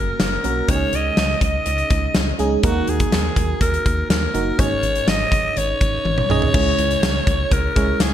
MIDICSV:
0, 0, Header, 1, 5, 480
1, 0, Start_track
1, 0, Tempo, 487805
1, 677, Time_signature, 4, 2, 24, 8
1, 8006, End_track
2, 0, Start_track
2, 0, Title_t, "Alto saxophone"
2, 0, Program_c, 0, 65
2, 0, Note_on_c, 0, 70, 89
2, 206, Note_off_c, 0, 70, 0
2, 224, Note_on_c, 0, 70, 95
2, 694, Note_on_c, 0, 73, 110
2, 709, Note_off_c, 0, 70, 0
2, 940, Note_on_c, 0, 75, 103
2, 955, Note_off_c, 0, 73, 0
2, 1409, Note_off_c, 0, 75, 0
2, 1417, Note_on_c, 0, 75, 106
2, 2328, Note_off_c, 0, 75, 0
2, 2607, Note_on_c, 0, 66, 88
2, 2850, Note_on_c, 0, 68, 85
2, 2865, Note_off_c, 0, 66, 0
2, 3550, Note_off_c, 0, 68, 0
2, 3556, Note_on_c, 0, 70, 95
2, 4003, Note_off_c, 0, 70, 0
2, 4039, Note_on_c, 0, 70, 96
2, 4524, Note_on_c, 0, 73, 117
2, 4538, Note_off_c, 0, 70, 0
2, 5004, Note_on_c, 0, 75, 117
2, 5019, Note_off_c, 0, 73, 0
2, 5490, Note_on_c, 0, 73, 96
2, 5505, Note_off_c, 0, 75, 0
2, 6204, Note_off_c, 0, 73, 0
2, 6210, Note_on_c, 0, 73, 118
2, 7404, Note_on_c, 0, 70, 103
2, 7419, Note_off_c, 0, 73, 0
2, 7885, Note_on_c, 0, 68, 93
2, 7900, Note_off_c, 0, 70, 0
2, 8006, Note_off_c, 0, 68, 0
2, 8006, End_track
3, 0, Start_track
3, 0, Title_t, "FM electric piano"
3, 0, Program_c, 1, 5
3, 0, Control_c, 1, 64, 127
3, 0, Note_on_c, 1, 58, 70
3, 0, Note_on_c, 1, 61, 60
3, 0, Note_on_c, 1, 66, 62
3, 0, Note_on_c, 1, 70, 81
3, 430, Note_off_c, 1, 58, 0
3, 430, Note_on_c, 1, 58, 67
3, 434, Note_off_c, 1, 61, 0
3, 434, Note_on_c, 1, 61, 62
3, 439, Note_off_c, 1, 66, 0
3, 439, Note_on_c, 1, 66, 65
3, 442, Note_off_c, 1, 70, 0
3, 442, Note_on_c, 1, 70, 75
3, 652, Note_off_c, 1, 58, 0
3, 654, Note_off_c, 1, 61, 0
3, 656, Note_off_c, 1, 66, 0
3, 658, Note_off_c, 1, 70, 0
3, 671, Note_on_c, 1, 56, 69
3, 674, Note_on_c, 1, 61, 66
3, 677, Note_on_c, 1, 49, 59
3, 678, Note_on_c, 1, 63, 66
3, 682, Note_on_c, 1, 67, 62
3, 690, Control_c, 1, 64, 0
3, 737, Note_off_c, 1, 67, 0
3, 740, Note_on_c, 1, 68, 74
3, 876, Control_c, 1, 64, 127
3, 1358, Note_off_c, 1, 49, 0
3, 1547, Note_off_c, 1, 56, 0
3, 1549, Note_off_c, 1, 61, 0
3, 1551, Note_off_c, 1, 63, 0
3, 1582, Note_off_c, 1, 68, 0
3, 2348, Note_on_c, 1, 56, 87
3, 2354, Note_on_c, 1, 61, 81
3, 2357, Note_on_c, 1, 63, 81
3, 2361, Note_on_c, 1, 68, 93
3, 2571, Note_off_c, 1, 56, 0
3, 2574, Note_off_c, 1, 61, 0
3, 2575, Note_off_c, 1, 63, 0
3, 2578, Note_off_c, 1, 68, 0
3, 2591, Note_on_c, 1, 58, 73
3, 2594, Note_on_c, 1, 63, 65
3, 2596, Note_on_c, 1, 51, 64
3, 2598, Note_on_c, 1, 66, 68
3, 2601, Note_on_c, 1, 70, 82
3, 2609, Control_c, 1, 64, 0
3, 2752, Control_c, 1, 64, 127
3, 3277, Note_off_c, 1, 51, 0
3, 3467, Note_off_c, 1, 58, 0
3, 3469, Note_off_c, 1, 63, 0
3, 3471, Note_off_c, 1, 66, 0
3, 3472, Note_off_c, 1, 70, 0
3, 4270, Note_on_c, 1, 58, 77
3, 4274, Note_on_c, 1, 63, 69
3, 4278, Note_on_c, 1, 66, 68
3, 4282, Note_on_c, 1, 70, 81
3, 4492, Note_off_c, 1, 58, 0
3, 4494, Note_off_c, 1, 63, 0
3, 4496, Note_off_c, 1, 66, 0
3, 4498, Note_off_c, 1, 70, 0
3, 4508, Note_on_c, 1, 61, 74
3, 4512, Note_on_c, 1, 44, 62
3, 4513, Note_on_c, 1, 63, 68
3, 4515, Note_on_c, 1, 68, 71
3, 4518, Note_on_c, 1, 73, 81
3, 4531, Control_c, 1, 64, 0
3, 4681, Control_c, 1, 64, 127
3, 5195, Note_off_c, 1, 44, 0
3, 5386, Note_off_c, 1, 61, 0
3, 5388, Note_off_c, 1, 63, 0
3, 5389, Note_off_c, 1, 68, 0
3, 5391, Note_off_c, 1, 73, 0
3, 6196, Note_on_c, 1, 61, 88
3, 6201, Note_on_c, 1, 63, 79
3, 6203, Note_on_c, 1, 68, 84
3, 6207, Note_on_c, 1, 75, 99
3, 6415, Note_off_c, 1, 61, 0
3, 6417, Note_off_c, 1, 63, 0
3, 6418, Note_off_c, 1, 68, 0
3, 6420, Note_off_c, 1, 75, 0
3, 6433, Note_on_c, 1, 56, 76
3, 6437, Note_on_c, 1, 61, 70
3, 6439, Note_on_c, 1, 49, 64
3, 6439, Note_on_c, 1, 64, 68
3, 6442, Note_on_c, 1, 68, 71
3, 6445, Note_on_c, 1, 73, 79
3, 6451, Control_c, 1, 64, 0
3, 6636, Control_c, 1, 64, 127
3, 7119, Note_off_c, 1, 49, 0
3, 7308, Note_off_c, 1, 56, 0
3, 7310, Note_off_c, 1, 61, 0
3, 7311, Note_off_c, 1, 64, 0
3, 7313, Note_off_c, 1, 68, 0
3, 7314, Note_off_c, 1, 73, 0
3, 7631, Note_on_c, 1, 56, 68
3, 7635, Note_on_c, 1, 61, 66
3, 7640, Note_on_c, 1, 64, 61
3, 7642, Note_on_c, 1, 68, 63
3, 7646, Note_on_c, 1, 73, 73
3, 8006, Note_off_c, 1, 56, 0
3, 8006, Note_off_c, 1, 61, 0
3, 8006, Note_off_c, 1, 64, 0
3, 8006, Note_off_c, 1, 68, 0
3, 8006, Note_off_c, 1, 73, 0
3, 8006, End_track
4, 0, Start_track
4, 0, Title_t, "FM bass"
4, 0, Program_c, 2, 39
4, 0, Note_on_c, 2, 30, 97
4, 130, Note_off_c, 2, 30, 0
4, 200, Note_on_c, 2, 30, 94
4, 372, Note_off_c, 2, 30, 0
4, 441, Note_on_c, 2, 35, 86
4, 612, Note_off_c, 2, 35, 0
4, 673, Note_on_c, 2, 37, 105
4, 848, Note_off_c, 2, 37, 0
4, 916, Note_on_c, 2, 37, 103
4, 1089, Note_off_c, 2, 37, 0
4, 1154, Note_on_c, 2, 37, 101
4, 1328, Note_off_c, 2, 37, 0
4, 1390, Note_on_c, 2, 37, 102
4, 1566, Note_off_c, 2, 37, 0
4, 1636, Note_on_c, 2, 37, 97
4, 1809, Note_off_c, 2, 37, 0
4, 1876, Note_on_c, 2, 37, 101
4, 2049, Note_off_c, 2, 37, 0
4, 2121, Note_on_c, 2, 37, 100
4, 2292, Note_off_c, 2, 37, 0
4, 2358, Note_on_c, 2, 37, 88
4, 2531, Note_off_c, 2, 37, 0
4, 2594, Note_on_c, 2, 39, 116
4, 2768, Note_off_c, 2, 39, 0
4, 2836, Note_on_c, 2, 39, 103
4, 3009, Note_off_c, 2, 39, 0
4, 3075, Note_on_c, 2, 39, 107
4, 3248, Note_off_c, 2, 39, 0
4, 3311, Note_on_c, 2, 39, 102
4, 3486, Note_off_c, 2, 39, 0
4, 3549, Note_on_c, 2, 39, 102
4, 3725, Note_off_c, 2, 39, 0
4, 3797, Note_on_c, 2, 39, 101
4, 3970, Note_off_c, 2, 39, 0
4, 4033, Note_on_c, 2, 39, 95
4, 4207, Note_off_c, 2, 39, 0
4, 4275, Note_on_c, 2, 30, 90
4, 4448, Note_off_c, 2, 30, 0
4, 4515, Note_on_c, 2, 32, 107
4, 4689, Note_off_c, 2, 32, 0
4, 4749, Note_on_c, 2, 32, 101
4, 4925, Note_off_c, 2, 32, 0
4, 4993, Note_on_c, 2, 32, 102
4, 5167, Note_off_c, 2, 32, 0
4, 5233, Note_on_c, 2, 32, 92
4, 5407, Note_off_c, 2, 32, 0
4, 5478, Note_on_c, 2, 32, 105
4, 5650, Note_off_c, 2, 32, 0
4, 5717, Note_on_c, 2, 32, 97
4, 5890, Note_off_c, 2, 32, 0
4, 5956, Note_on_c, 2, 32, 99
4, 6129, Note_off_c, 2, 32, 0
4, 6196, Note_on_c, 2, 35, 90
4, 6369, Note_off_c, 2, 35, 0
4, 6436, Note_on_c, 2, 37, 120
4, 6610, Note_off_c, 2, 37, 0
4, 6678, Note_on_c, 2, 37, 100
4, 6850, Note_off_c, 2, 37, 0
4, 6913, Note_on_c, 2, 37, 101
4, 7088, Note_off_c, 2, 37, 0
4, 7153, Note_on_c, 2, 37, 103
4, 7327, Note_off_c, 2, 37, 0
4, 7395, Note_on_c, 2, 37, 109
4, 7569, Note_off_c, 2, 37, 0
4, 7639, Note_on_c, 2, 37, 97
4, 7811, Note_off_c, 2, 37, 0
4, 7871, Note_on_c, 2, 37, 100
4, 8006, Note_off_c, 2, 37, 0
4, 8006, End_track
5, 0, Start_track
5, 0, Title_t, "Drums"
5, 193, Note_on_c, 9, 38, 105
5, 195, Note_on_c, 9, 42, 87
5, 292, Note_off_c, 9, 38, 0
5, 293, Note_off_c, 9, 42, 0
5, 434, Note_on_c, 9, 42, 62
5, 532, Note_off_c, 9, 42, 0
5, 673, Note_on_c, 9, 42, 88
5, 674, Note_on_c, 9, 36, 111
5, 772, Note_off_c, 9, 42, 0
5, 773, Note_off_c, 9, 36, 0
5, 913, Note_on_c, 9, 42, 68
5, 1011, Note_off_c, 9, 42, 0
5, 1152, Note_on_c, 9, 38, 100
5, 1153, Note_on_c, 9, 42, 83
5, 1250, Note_off_c, 9, 38, 0
5, 1251, Note_off_c, 9, 42, 0
5, 1390, Note_on_c, 9, 36, 87
5, 1394, Note_on_c, 9, 42, 79
5, 1489, Note_off_c, 9, 36, 0
5, 1493, Note_off_c, 9, 42, 0
5, 1631, Note_on_c, 9, 42, 89
5, 1729, Note_off_c, 9, 42, 0
5, 1752, Note_on_c, 9, 42, 50
5, 1850, Note_off_c, 9, 42, 0
5, 1871, Note_on_c, 9, 42, 80
5, 1875, Note_on_c, 9, 36, 88
5, 1970, Note_off_c, 9, 42, 0
5, 1973, Note_off_c, 9, 36, 0
5, 2111, Note_on_c, 9, 38, 103
5, 2112, Note_on_c, 9, 42, 81
5, 2209, Note_off_c, 9, 38, 0
5, 2211, Note_off_c, 9, 42, 0
5, 2351, Note_on_c, 9, 42, 61
5, 2450, Note_off_c, 9, 42, 0
5, 2590, Note_on_c, 9, 42, 93
5, 2593, Note_on_c, 9, 36, 105
5, 2688, Note_off_c, 9, 42, 0
5, 2692, Note_off_c, 9, 36, 0
5, 2829, Note_on_c, 9, 42, 70
5, 2927, Note_off_c, 9, 42, 0
5, 2949, Note_on_c, 9, 42, 58
5, 2953, Note_on_c, 9, 36, 95
5, 3047, Note_off_c, 9, 42, 0
5, 3051, Note_off_c, 9, 36, 0
5, 3074, Note_on_c, 9, 38, 100
5, 3075, Note_on_c, 9, 42, 85
5, 3172, Note_off_c, 9, 38, 0
5, 3173, Note_off_c, 9, 42, 0
5, 3310, Note_on_c, 9, 36, 85
5, 3314, Note_on_c, 9, 42, 84
5, 3408, Note_off_c, 9, 36, 0
5, 3412, Note_off_c, 9, 42, 0
5, 3551, Note_on_c, 9, 36, 94
5, 3553, Note_on_c, 9, 42, 86
5, 3649, Note_off_c, 9, 36, 0
5, 3652, Note_off_c, 9, 42, 0
5, 3678, Note_on_c, 9, 42, 51
5, 3776, Note_off_c, 9, 42, 0
5, 3796, Note_on_c, 9, 36, 90
5, 3796, Note_on_c, 9, 42, 76
5, 3895, Note_off_c, 9, 36, 0
5, 3895, Note_off_c, 9, 42, 0
5, 4037, Note_on_c, 9, 38, 109
5, 4038, Note_on_c, 9, 42, 87
5, 4135, Note_off_c, 9, 38, 0
5, 4136, Note_off_c, 9, 42, 0
5, 4275, Note_on_c, 9, 42, 67
5, 4374, Note_off_c, 9, 42, 0
5, 4515, Note_on_c, 9, 42, 95
5, 4516, Note_on_c, 9, 36, 110
5, 4613, Note_off_c, 9, 42, 0
5, 4614, Note_off_c, 9, 36, 0
5, 4753, Note_on_c, 9, 42, 67
5, 4852, Note_off_c, 9, 42, 0
5, 4875, Note_on_c, 9, 42, 59
5, 4974, Note_off_c, 9, 42, 0
5, 4995, Note_on_c, 9, 38, 107
5, 4996, Note_on_c, 9, 42, 85
5, 5094, Note_off_c, 9, 38, 0
5, 5095, Note_off_c, 9, 42, 0
5, 5232, Note_on_c, 9, 36, 91
5, 5239, Note_on_c, 9, 42, 84
5, 5331, Note_off_c, 9, 36, 0
5, 5338, Note_off_c, 9, 42, 0
5, 5477, Note_on_c, 9, 42, 95
5, 5576, Note_off_c, 9, 42, 0
5, 5715, Note_on_c, 9, 42, 78
5, 5718, Note_on_c, 9, 36, 90
5, 5814, Note_off_c, 9, 42, 0
5, 5816, Note_off_c, 9, 36, 0
5, 5957, Note_on_c, 9, 48, 58
5, 6056, Note_off_c, 9, 48, 0
5, 6078, Note_on_c, 9, 47, 65
5, 6176, Note_off_c, 9, 47, 0
5, 6198, Note_on_c, 9, 45, 82
5, 6297, Note_off_c, 9, 45, 0
5, 6318, Note_on_c, 9, 43, 84
5, 6416, Note_off_c, 9, 43, 0
5, 6437, Note_on_c, 9, 49, 104
5, 6438, Note_on_c, 9, 36, 114
5, 6535, Note_off_c, 9, 49, 0
5, 6536, Note_off_c, 9, 36, 0
5, 6676, Note_on_c, 9, 42, 75
5, 6774, Note_off_c, 9, 42, 0
5, 6796, Note_on_c, 9, 42, 62
5, 6895, Note_off_c, 9, 42, 0
5, 6918, Note_on_c, 9, 38, 107
5, 6918, Note_on_c, 9, 54, 62
5, 6919, Note_on_c, 9, 42, 88
5, 7016, Note_off_c, 9, 54, 0
5, 7017, Note_off_c, 9, 38, 0
5, 7018, Note_off_c, 9, 42, 0
5, 7154, Note_on_c, 9, 36, 93
5, 7159, Note_on_c, 9, 42, 81
5, 7253, Note_off_c, 9, 36, 0
5, 7257, Note_off_c, 9, 42, 0
5, 7395, Note_on_c, 9, 36, 104
5, 7397, Note_on_c, 9, 42, 96
5, 7493, Note_off_c, 9, 36, 0
5, 7496, Note_off_c, 9, 42, 0
5, 7637, Note_on_c, 9, 42, 79
5, 7639, Note_on_c, 9, 36, 96
5, 7736, Note_off_c, 9, 42, 0
5, 7737, Note_off_c, 9, 36, 0
5, 7872, Note_on_c, 9, 54, 71
5, 7874, Note_on_c, 9, 38, 107
5, 7875, Note_on_c, 9, 42, 88
5, 7970, Note_off_c, 9, 54, 0
5, 7972, Note_off_c, 9, 38, 0
5, 7973, Note_off_c, 9, 42, 0
5, 8006, End_track
0, 0, End_of_file